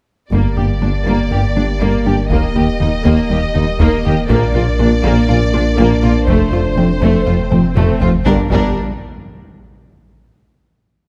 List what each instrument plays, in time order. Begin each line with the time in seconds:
0.31 double bass section G1, tuba G1, sub bass G1, analog synth bass G2, cello section G2, synth pluck G3, french horn section A#3 G4, viola section A#3, violin section A#3 D5, taiko
0.56 tuba G1, double bass section G1, analog synth bass G2, cello section G2, viola section A#3, synth pluck G4, violin section G4
0.81 double bass section G1, tuba G1, cello section G2, analog synth bass G3, viola section A#3, synth pluck D4, violin section D4
1.06 double bass section G1, tuba G1, cello section G2, analog synth bass G2, synth pluck G3, violin section A#3, viola section A#3
1.31 double bass section G1, tuba G1, analog synth bass G2, cello section G2, viola section A#3, synth pluck A#3, violin section G4
1.56 tuba G1, double bass section G1, cello section G2, analog synth bass G3, viola section A#3, violin section D4, synth pluck D4
1.81 double bass section G1, tuba G1, cello section G2, analog synth bass G2, synth pluck G3, violin section A#3, viola section A#3
2.06 double bass section G1, tuba G1, cello section G2, analog synth bass G3, viola section A#3, synth pluck D4, violin section G4
2.30 sub bass D#1, cello section D#2, analog synth bass D#2, tuba D#2, double bass section D#2, synth pluck D#3, violin section A#3 D#5, viola section A#3, taiko
2.55 cello section D#2, analog synth bass D#2, tuba D#2, double bass section D#2, viola section A#3, synth pluck D#4, violin section G4
2.80 cello section D#2, double bass section D#2, tuba D#2, analog synth bass D#3, synth pluck A#3, viola section A#3, violin section D#4
3.04 cello section D#2, double bass section D#2, analog synth bass D#2, tuba D#2, synth pluck D#3, viola section A#3, violin section A#3, taiko
3.30 cello section D#2, analog synth bass D#2, double bass section D#2, tuba D#2, synth pluck G3, viola section A#3, violin section G4
3.55 cello section D#2, double bass section D#2, tuba D#2, analog synth bass D#3, synth pluck A#3, viola section A#3, violin section D#4
3.79 cello section D#2, double bass section D#2, analog synth bass D#2, tuba D#2, synth pluck D#3, violin section A#3, viola section A#3, taiko
4.05 double bass section D#2, cello section D#2, tuba D#2, analog synth bass D#3, synth pluck A#3, viola section A#3, violin section G4
4.29 double bass section A#1, sub bass A#1, tuba A#1, cello section A#2, analog synth bass A#2, french horn section A#3 D4, violin section A#3 D5, viola section A#3, synth pluck A#3, taiko
4.54 double bass section A#1, tuba A#1, cello section A#2, analog synth bass A#2, viola section A#3, violin section F4, synth pluck A#4
4.79 double bass section A#1, tuba A#1, cello section A#2, viola section A#3, analog synth bass A#3, violin section D4, synth pluck F4
5.03 double bass section A#1, tuba A#1, cello section A#2, analog synth bass A#2, viola section A#3, synth pluck A#3, violin section A#3, taiko
5.28 double bass section A#1, tuba A#1, analog synth bass A#2, cello section A#2, viola section A#3, synth pluck D4, violin section F4
5.53 double bass section A#1, tuba A#1, cello section A#2, viola section A#3, analog synth bass A#3, violin section D4, synth pluck F4
5.78 tuba A#1, double bass section A#1, cello section A#2, analog synth bass A#2, viola section A#3, synth pluck A#3, violin section A#3, taiko
6.03 double bass section A#1, tuba A#1, cello section A#2, viola section A#3, analog synth bass A#3, violin section F4, synth pluck F4
6.28 tuba F1, sub bass F1, double bass section F1, cello section F2, analog synth bass F2, synth pluck F3, violin section A3 C5, viola section A3, french horn section A3, taiko, swell
6.52 tuba F1, double bass section F1, analog synth bass F2, cello section F2, viola section A3, violin section F4, synth pluck F4
6.77 double bass section F1, tuba F1, cello section F2, analog synth bass F3, viola section A3, synth pluck C4, violin section C4, taiko low-mid
7.02 double bass section F1, tuba F1, analog synth bass F2, cello section F2, synth pluck F3, violin section A3, viola section A3, taiko
7.26 double bass section F1, tuba F1, analog synth bass F2, cello section F2, viola section A3, synth pluck A3, french horn section C4, violin section F4
7.51 double bass section F1, tuba F1, cello section F2, analog synth bass F3, viola section A3, violin section C4, synth pluck C4, taiko low-mid
7.76 tuba F1, double bass section F1, analog synth bass F2, cello section F2, synth pluck F3, viola section A3, violin section A3, taiko mid
8.01 tuba F1, double bass section F1, cello section F2, analog synth bass F3, viola section A3, synth pluck C4, violin section F4, taiko low
8.26 tuba G1, sub bass G1, double bass section G1, cello section G2, viola section G3, french horn section A#3 D4, violin section D4 A#4, taiko, impact
8.51 tuba G1, sub bass G1, double bass section G1, cello section G2, viola section G3, violin section D4 A#4, taiko